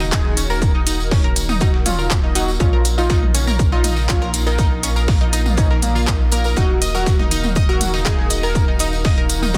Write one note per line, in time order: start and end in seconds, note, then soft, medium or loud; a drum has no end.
0.00 2.58 D#1 medium
0.00 2.56 D#3 medium
0.00 9.58 A#3 medium
0.00 4.16 D#4 medium
0.00 0.07 D#4 medium
0.00 2.56 F#4 medium
0.00 9.58 A#4 medium
0.00 0.07 D#5 medium
0.00 0.60 F5 medium
0.00 snare medium
0.00 tambourine medium
0.00 impact medium
0.12 0.19 D#4 loud
0.12 0.34 G#4 medium
0.12 0.19 D#5 medium
0.12 kick loud
0.12 snare loud
0.12 clap loud
0.12 shaker medium
0.25 snare soft
0.37 0.41 C#4 medium
0.37 0.41 C#5 medium
0.37 closed hi-hat loud
0.37 tambourine loud
0.37 shaker medium
0.50 0.56 A#4 medium
0.50 0.71 A#4 loud
0.50 0.56 A#5 medium
0.50 tambourine medium
0.62 6.53 D#4 medium
0.62 kick loud
0.62 tambourine soft
0.62 shaker medium
0.75 0.81 D#4 medium
0.75 0.81 D#5 medium
0.87 0.94 D#4 loud
0.87 0.94 D#5 medium
0.87 closed hi-hat loud
0.87 tambourine medium
0.87 shaker medium
1.00 tambourine medium
1.11 1.16 C#4 medium
1.11 1.16 C#5 medium
1.11 kick loud
1.11 snare loud
1.11 open hi-hat medium
1.11 tambourine soft
1.24 1.31 A#4 medium
1.24 1.31 A#5 medium
1.24 closed hi-hat soft
1.36 closed hi-hat loud
1.36 tambourine loud
1.36 shaker medium
1.49 1.56 D#4 medium
1.49 1.56 D#5 medium
1.49 mid tom medium
1.49 tambourine soft
1.60 1.68 D#4 loud
1.60 1.76 F#4 medium
1.60 1.68 D#5 medium
1.60 kick loud
1.60 tambourine soft
1.60 shaker medium
1.74 snare soft
1.86 1.90 C#4 medium
1.86 2.15 F4 loud
1.86 2.15 F4 medium
1.86 1.90 C#5 medium
1.86 closed hi-hat loud
1.86 mid tom medium
1.86 tambourine medium
1.86 shaker medium
1.99 2.05 A#4 medium
1.99 2.05 A#5 medium
1.99 tambourine medium
2.11 kick loud
2.11 snare loud
2.11 clap loud
2.11 shaker medium
2.23 2.30 D#4 medium
2.23 2.30 D#5 medium
2.35 2.42 D#4 loud
2.35 2.50 F#4 medium
2.35 2.42 D#5 medium
2.35 closed hi-hat loud
2.35 tambourine medium
2.35 shaker medium
2.48 tambourine soft
2.60 6.54 A#1 medium
2.60 2.64 C#4 medium
2.60 2.82 F4 loud
2.60 6.53 F4 loud
2.60 2.82 F4 loud
2.60 2.64 C#5 medium
2.60 kick loud
2.60 tambourine soft
2.60 shaker medium
2.73 2.79 A#4 medium
2.73 2.79 A#5 medium
2.79 8.10 A#5 medium
2.85 closed hi-hat loud
2.85 tambourine loud
2.85 shaker medium
2.98 3.04 D#4 medium
2.98 3.19 F4 medium
2.98 3.19 F4 loud
2.98 3.04 D#5 medium
2.98 6.57 F5 medium
2.98 tambourine medium
3.10 3.17 D#4 loud
3.10 3.17 D#5 medium
3.10 kick loud
3.10 snare loud
3.10 tambourine soft
3.10 shaker medium
3.15 8.16 D#6 medium
3.23 mid tom medium
3.35 3.39 C#4 medium
3.35 3.39 C#5 medium
3.35 closed hi-hat loud
3.35 tambourine loud
3.35 shaker medium
3.47 3.54 A#4 medium
3.47 3.54 A#5 medium
3.47 mid tom medium
3.47 tambourine medium
3.59 kick loud
3.59 tambourine soft
3.59 shaker medium
3.72 3.79 D#4 medium
3.72 3.94 F4 medium
3.72 3.94 F4 loud
3.72 3.79 D#5 medium
3.84 3.91 D#4 loud
3.84 3.91 D#5 medium
3.84 closed hi-hat loud
3.84 mid tom medium
3.84 tambourine loud
3.84 shaker medium
3.96 snare medium
3.96 tambourine medium
4.09 4.13 C#4 medium
4.09 4.31 F4 medium
4.09 4.13 C#5 medium
4.09 kick loud
4.09 snare loud
4.09 clap loud
4.09 shaker medium
4.22 4.28 A#4 medium
4.22 4.28 A#5 medium
4.22 snare soft
4.34 closed hi-hat loud
4.34 tambourine medium
4.34 shaker medium
4.47 4.53 D#4 medium
4.47 4.68 A#4 medium
4.47 4.53 D#5 medium
4.47 tambourine medium
4.58 4.65 D#4 loud
4.58 4.65 D#5 medium
4.58 kick loud
4.58 tambourine soft
4.58 shaker medium
4.83 4.87 C#4 medium
4.83 4.87 C#5 medium
4.83 closed hi-hat loud
4.83 tambourine loud
4.83 shaker medium
4.96 5.03 A#4 medium
4.96 5.03 A#5 medium
4.96 tambourine soft
5.08 kick loud
5.08 snare loud
5.08 open hi-hat medium
5.08 tambourine soft
5.21 5.27 D#4 medium
5.21 5.27 D#5 medium
5.21 closed hi-hat soft
5.33 5.40 D#4 loud
5.33 5.40 D#5 medium
5.33 closed hi-hat loud
5.33 tambourine loud
5.33 shaker medium
5.46 mid tom medium
5.46 tambourine medium
5.57 5.62 C#4 medium
5.57 5.72 D#4 medium
5.57 5.62 C#5 medium
5.57 kick loud
5.57 tambourine soft
5.57 shaker medium
5.71 5.77 A#4 medium
5.71 5.77 A#5 medium
5.71 snare soft
5.82 6.11 A#3 loud
5.82 closed hi-hat loud
5.82 mid tom medium
5.82 tambourine medium
5.82 shaker medium
5.95 6.02 F4 medium
5.95 6.02 F5 medium
5.95 tambourine medium
6.07 6.14 D#4 medium
6.07 6.14 D#5 medium
6.07 kick loud
6.07 snare loud
6.07 clap loud
6.07 shaker medium
6.32 6.47 A#3 medium
6.32 6.42 A#4 loud
6.32 6.42 A#5 medium
6.32 closed hi-hat loud
6.32 tambourine loud
6.32 shaker medium
6.44 6.51 A#4 medium
6.44 6.51 A#5 medium
6.44 tambourine soft
6.56 9.58 D#1 medium
6.56 9.58 D#3 medium
6.56 6.64 D#4 loud
6.56 9.58 D#4 medium
6.56 9.58 F#4 medium
6.56 6.79 F#4 loud
6.56 6.64 D#5 medium
6.56 9.58 F5 medium
6.56 kick loud
6.56 tambourine soft
6.56 shaker medium
6.82 6.92 D#5 medium
6.82 6.92 D#6 medium
6.82 closed hi-hat loud
6.82 tambourine medium
6.82 shaker medium
6.95 7.16 F#4 medium
6.95 7.16 F#4 loud
6.95 7.01 A#4 medium
6.95 7.01 A#5 medium
6.95 tambourine medium
7.06 kick loud
7.06 snare loud
7.06 tambourine soft
7.06 shaker medium
7.19 7.26 D#4 medium
7.19 7.26 D#5 medium
7.19 mid tom medium
7.31 7.38 D#4 loud
7.31 7.38 D#5 medium
7.31 closed hi-hat loud
7.31 tambourine medium
7.31 shaker medium
7.44 mid tom medium
7.44 tambourine medium
7.55 7.67 D#5 medium
7.55 7.66 D#6 medium
7.55 kick loud
7.55 tambourine soft
7.55 shaker medium
7.69 7.90 F#4 loud
7.69 7.90 F#4 medium
7.69 7.75 A#4 medium
7.69 7.75 A#5 medium
7.81 closed hi-hat loud
7.81 mid tom medium
7.81 tambourine loud
7.81 shaker medium
7.94 8.00 D#4 medium
7.94 8.00 D#5 medium
7.94 snare medium
7.94 tambourine medium
8.06 8.13 D#4 loud
8.06 8.27 G#4 loud
8.06 8.13 D#5 medium
8.06 kick loud
8.06 snare loud
8.06 clap loud
8.06 shaker medium
8.19 snare soft
8.30 8.41 D#5 medium
8.30 8.41 D#6 medium
8.30 closed hi-hat loud
8.30 tambourine medium
8.30 shaker medium
8.43 8.65 A#4 medium
8.43 8.50 A#4 medium
8.43 8.65 A#4 medium
8.43 8.50 A#5 medium
8.43 tambourine medium
8.55 kick loud
8.55 tambourine soft
8.55 shaker medium
8.68 8.75 D#4 medium
8.68 8.75 D#5 medium
8.79 8.87 D#4 loud
8.79 8.87 D#5 medium
8.79 closed hi-hat loud
8.79 tambourine medium
8.79 shaker medium
8.93 tambourine soft
9.04 9.15 D#5 medium
9.04 9.15 D#6 medium
9.04 kick loud
9.04 snare loud
9.04 open hi-hat medium
9.04 tambourine soft
9.18 9.24 A#4 medium
9.18 9.24 A#5 medium
9.18 closed hi-hat soft
9.29 closed hi-hat loud
9.29 tambourine loud
9.29 shaker medium
9.42 9.49 D#4 medium
9.42 9.49 D#5 medium
9.42 mid tom medium
9.42 tambourine medium
9.54 9.58 D#4 loud
9.54 9.58 F#4 medium
9.54 9.58 D#5 medium
9.54 kick loud
9.54 tambourine soft
9.54 shaker medium